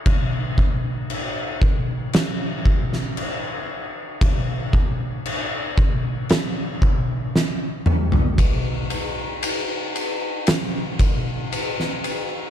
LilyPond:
\new DrumStaff \with { instrumentName = "Drums" } \drummode { \time 4/4 \tempo 4 = 58 <cymc bd>8 bd8 cymc8 bd8 <cymc sn>8 bd16 sn16 cymc4 | <cymc bd>8 bd8 cymc8 bd8 <cymc sn>8 bd8 sn8 toml16 tomfh16 | <bd cymr>8 cymr8 cymr8 cymr8 <cymr sn>8 <bd cymr>8 cymr16 sn16 cymr8 | }